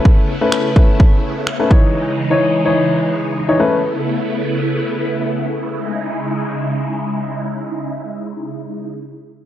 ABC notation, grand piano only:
X:1
M:4/4
L:1/16
Q:1/4=127
K:C#m
V:1 name="Grand piano"
[A,CB]2 z [A,CB]2 z [A,CB]6 z [A,CB] [E,Dc]2- | [E,Dc]2 z [E,Dc]2 z [E,Dc]6 z [E,Dc] [A,CB]2 | z16 | z16 |
z16 |]